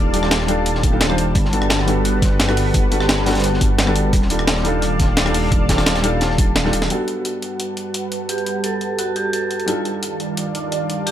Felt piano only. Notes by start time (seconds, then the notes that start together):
Already playing: G3 D4 D#4 F4 A4
0.13 G3 D4 D#4 F4 A4
0.47 G3 D4 D#4 F4 A4
0.91 G3 D4 D#4 F4 A4
1.09 G3 D4 D#4 F4 C5
1.52 G3 B3 D4 F#4 A4
1.85 G3 B3 D4 F#4 A4
2.47 G3 B3 D4 F#4 A4
2.91 G3 B3 D4 F#4 A4
3.25 G3 B3 D4 F#4 A4
3.86 G3 B3 D4 F#4 A4
4.29 G3 D4 D#4 F4 A4
4.63 G3 D4 D#4 F4 A4
5.24 G3 D4 D#4 F4 A4
5.68 G3 D4 D#4 F4 A4
6.02 G3 D4 D#4 F4 A4
6.64 G3 D4 D#4 F4 A4
6.89 G3 B3 D4 A4 F#5
9.66 G3 D4 D#4 F4 A4